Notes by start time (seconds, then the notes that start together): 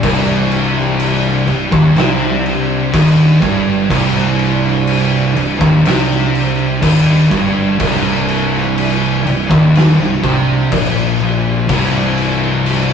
Already playing: C3 G3 D4
0.03 C1 C2, kick, crash
0.51 crash
0.78 snare
1.00 crash
1.46 C1 C2, crash
1.71 D#1 D#2, kick
1.95 C2 C3, snare, crash
2.46 crash
2.93 D#1 D#2, kick, crash
3.41 G1 G2, kick, crash
3.90 C1 C2, kick, crash
4.39 crash
4.66 snare
4.87 crash
5.35 C1 C2, crash
5.59 D#1 D#2, kick
5.84 C2 C3, snare, crash
6.35 crash
6.82 D#1 D#2, kick, crash
7.30 G1 G2, kick, crash
7.79 C1 C2 F3, kick, crash
8.28 crash
8.55 snare
8.78 crash
9.25 C1 C2, crash
9.50 D#1 D#2, kick
9.75 snare, crash
9.99 C1 C2
10.23 C2 C3, kick, crash
10.72 A#1 A#2, kick, crash
11.20 A#1 A#2, crash
11.69 C1 C2, kick, crash
12.18 crash
12.66 crash